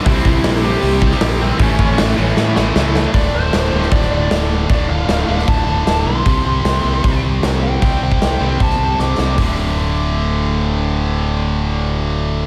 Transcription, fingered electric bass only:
X:1
M:4/4
L:1/8
Q:1/4=154
K:Cmix
V:1 name="Fingered electric bass" clef=bass
C,, C,, B,,,2 C,,2 B,,,2 | A,,, A,,, A,,, A,,, A,, A,,, ^C,,2 | D,,, D,,, D,,, D,,, D,,, D,,, D,,,2 | D,,, D,,, D,,, D,,, D,,, D,,, D,,, =B,,, |
C,, C,, C,, C,, C,, C,, C,,2 | C,, C,, C,, C,, C,, C,, C,, C,, | D,,,8- | D,,,8 |]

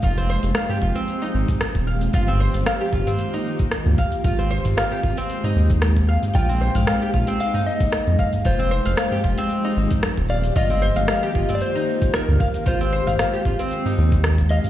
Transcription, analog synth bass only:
X:1
M:4/4
L:1/16
Q:"Swing 16ths" 1/4=114
K:Fm
V:1 name="Analog synth bass" clef=bass
F,,,3 F,,, z2 F,,, z3 A,,, z2 E,,,3 | G,,,3 G,,, z2 G,,, z6 =D,, z2 | A,,,3 A,,, z2 A,,, z3 E,,4- E,, z | B,,,3 B,,, z2 B,,, z6 F,, z2 |
F,,,3 F,,, z2 F,,, z3 A,,, z2 E,,,3 | G,,,3 G,,, z2 G,,, z6 =D,, z2 | A,,,3 A,,, z2 A,,, z3 E,,4- E,, z |]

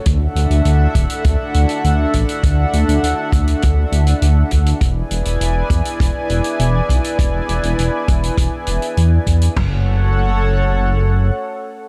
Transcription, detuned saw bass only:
X:1
M:4/4
L:1/16
Q:1/4=101
K:F#m
V:1 name="Detuned saw bass" clef=bass
D,, z D,, D,, D,, z D,,, z D,, z D,, z D,, z A,,, z | D,, z D,, D,, D,, z D,, z D,, z D,, z D,, z D,, z | E,,, z E,,, E,,, E,,, z E,, z E,,, z E,,, z E,,, z B,,, z | E,,, z E,,, E,,, E,,, z E,,, z E,,, z E,,, z E,, z E,, z |
F,,,12 z4 |]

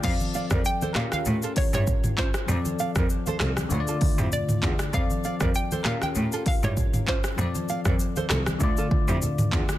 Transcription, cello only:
X:1
M:4/4
L:1/16
Q:"Swing 16ths" 1/4=98
K:F
V:1 name="Cello" clef=bass
F,,3 F,, z2 B,,2 A,,3 G,,2 z3 | F,,3 F,, z2 C,,2 D,,3 F,, z2 E,,2 | F,,3 F,, z2 B,,2 A,,3 G,,2 z3 | F,,3 F,, z2 C,,2 D,,3 F,, z2 E,,2 |]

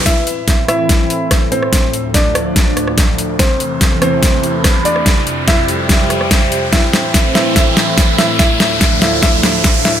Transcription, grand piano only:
X:1
M:4/4
L:1/8
Q:1/4=144
K:Am
V:1 name="Grand piano"
[Ee]3 [Ee]4 [Cc]- | [Cc]2 [Dd]6 | [Cc]3 [Cc]4 [Dd]- | [Dd]2 [Ee]6 |
[Ee]3 [Ee] [Ee]3 [Ee] | [Ee]3 [Ee] [Ee]3 [Ee] |]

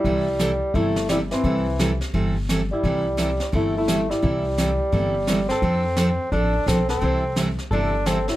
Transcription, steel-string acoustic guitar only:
X:1
M:4/4
L:1/16
Q:"Swing" 1/4=172
K:C
V:1 name="Steel-string acoustic guitar"
[C,E,G,CEA]2 z2 [C,E,G,CEA] z3 [C,E,G,CEA]2 z2 [C,E,G,CEA] z3 | [C,E,G,CEA]2 z2 [C,E,G,CEA] z3 [C,E,G,CEA]2 z2 [C,E,G,CEA] z3 | [C,E,G,CEA]2 z2 [C,E,G,CEA] z3 [C,E,G,CEA]2 z2 [C,E,G,CEA] z3 | [C,E,G,CEA]2 z2 [C,E,G,CEA] z3 [C,E,G,CEA]2 z2 [C,E,G,CEA] z3 |
[F,CDA]2 z2 [F,CDA] z3 [F,CDA]2 z2 [F,CDA] z3 | [C,E,G,CEA]2 z2 [C,E,G,CEA] z3 [C,E,G,CEA]2 z2 [C,E,G,CEA] z3 |]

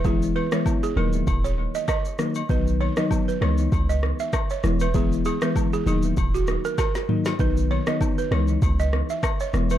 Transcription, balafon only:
X:1
M:4/4
L:1/16
Q:"Swing 16ths" 1/4=98
K:C#dor
V:1 name="Balafon"
G z B c z G A z2 c z d d2 z2 | B z c d z B c z2 d z e z c z B | G z G B z G G z2 F z A A2 z2 | B z c d z B c z2 d z e z c z B |]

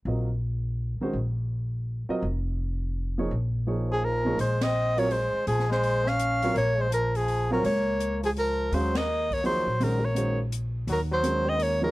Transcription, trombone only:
X:1
M:3/4
L:1/8
Q:"Swing" 1/4=166
K:Bbm
V:1 name="Trombone" clef=bass
z6 | z6 | z6 | z3 F, F,2 |
A, C2 B, A,2 | F, A,2 D3 | B, A, F, F,2 G, | B,3 F, F,2 |
G, B,2 B, G,2 | G, B,2 z3 | G, G,2 C B, G, |]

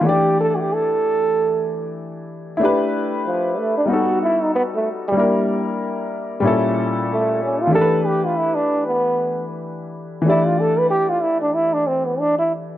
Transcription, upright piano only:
X:1
M:4/4
L:1/8
Q:"Swing 16ths" 1/4=94
K:Am
V:1 name="Upright piano"
[E,A,DGd]8 | [A,DEGB]4 [G,B,^D^FA]4 | [G,_B,DE_B]4 [_B,,G,^CEA]4 | [E,A,DG_B=B]8 |
[E,A,DGd]8 |]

